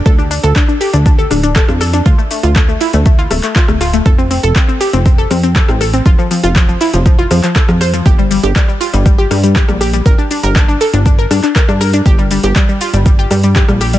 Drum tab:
HH |x-oxx-oxx-oxx-ox|x-oxx-oxx-oxx-ox|x-oxx-oxx-oxx-ox|x-oxx-oxx-oxx-ox|
SH |xxxxxxxxxxxxxxxx|xxxxxxxxxxxxxxxx|xxxxxxxxxxxxxxxx|xxxxxxxxxxxxxxxx|
CP |----x-------x---|----x------xx---|----x-------x---|----x------xx---|
SD |----------r--rr-|----------r--rr-|----------r--rr-|----------r--rr-|
BD |o---o---o---o---|o---o---o---o---|o---o---o---o---|o---o---o---o---|

HH |x-oxx-oxx-oxx-ox|x-oxx-oxx-oxx-ox|x-oxx-oxx-oxx-ox|
SH |xxxxxxxxxxxxxxxx|xxxxxxxxxxxxxxxx|xxxxxxxxxxxxxxxx|
CP |----x-------x---|----x------xx---|----x-------x---|
SD |----------r--rr-|----------r--rr-|----------r--rr-|
BD |o---o---o---o---|o---o---o---o---|o---o---o---o---|